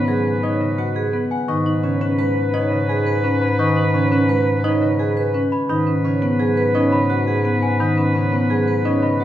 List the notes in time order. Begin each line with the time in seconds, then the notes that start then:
Already playing: G#2 B3 B4 C#5 D#5 F#5
0.08 F#3 G#4 G#5
0.43 D#4 C#5 D#5
0.61 C#3 D#5
0.78 F#4 F#5
0.96 G#4
1.13 B3 B4
1.31 F#5 G#5
1.48 G#2 D#3 D#4 B4 D#5 C#6
1.66 D#4
1.83 C#3 C#4 C#5
2.01 C#4 B4
2.19 G#3 B4 B5
2.53 D#4 C#5 D#5
2.71 C#3 D#5
2.89 G#4 G#5
3.06 B4
3.24 C#4 B4
3.41 G#5 B5
3.59 D#3 D#4 D#5 C#6
3.77 D#4
3.94 C#3 C#4 C#5
4.11 C#4 B4
4.29 G#3 B4 B5
4.64 D#4 C#5 D#5
4.82 C#3 D#5
4.99 G#4 G#5
5.17 B4
5.34 C#4 B4
5.52 G#5 B5
5.69 G#2 D#3 D#4 B4 D#5 B5
5.87 C#4
6.05 C#3 C#4 C#5
6.22 B3 B4
6.40 F#3 G#4 G#5
6.57 B4
6.75 C#4 D#4 C#5 D#5
6.92 C#3 D#5 B5
7.10 F#4 F#5
7.27 G#4
7.45 B3 B4
7.62 F#5 G#5
7.80 D#3 D#4 D#5 B5
7.98 C#4
8.15 C#3 C#4 C#5
8.32 B3 B4
8.50 F#3 G#4 G#5
8.68 B4
8.85 C#4 D#4 C#5 D#5
9.03 C#3 D#5 B5
9.20 F#4 F#5